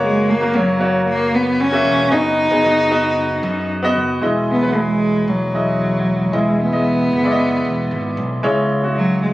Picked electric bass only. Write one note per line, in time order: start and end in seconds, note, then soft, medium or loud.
0.00 0.37 F#1 loud
0.41 0.53 F#1 medium
0.53 1.81 F#1 loud
1.85 2.10 E1 loud
2.12 2.48 F#1 loud
2.51 2.63 F#1 medium
2.64 3.39 F#1 loud
3.43 3.92 F#2 loud
3.96 4.20 F#1 medium
4.22 5.23 E1 medium
5.28 6.29 E1 medium
6.33 6.70 E1 medium
6.72 7.09 E1 medium
7.12 7.61 F#1 medium
7.65 7.89 E1 medium
7.91 8.15 G#1 medium
8.17 8.42 B1 medium
8.43 9.33 C#2 medium